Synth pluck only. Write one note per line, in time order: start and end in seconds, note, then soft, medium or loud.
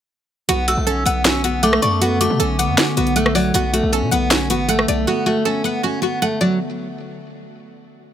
0.49 0.67 F#4 medium
0.68 1.25 F#4 medium
0.87 1.82 A4 medium
1.06 1.62 F#5 medium
1.26 1.43 F#4 loud
1.45 2.00 F#4 medium
1.63 2.58 F#5 medium
1.82 2.78 D5 medium
2.02 2.19 F#4 loud
2.21 2.77 F#4 medium
2.40 3.35 A4 medium
2.59 3.15 F#5 medium
2.78 2.96 F#4 medium
2.97 3.54 F#4 medium
3.16 3.55 F#5 medium
3.35 3.54 D5 medium
3.55 3.72 F#4 loud
3.74 4.30 F#4 medium
3.93 4.88 A4 medium
4.11 4.68 F#5 medium
4.31 4.49 F#4 medium
4.51 5.06 F#4 medium
4.69 5.64 F#5 loud
4.88 5.84 D5 medium
5.07 5.25 F#4 medium
5.26 5.82 F#4 medium
5.45 6.41 A4 medium
5.65 6.21 F#5 medium
5.83 6.02 F#4 medium
6.03 6.60 F#4 medium
6.22 6.60 F#5 loud
6.41 6.60 D5 medium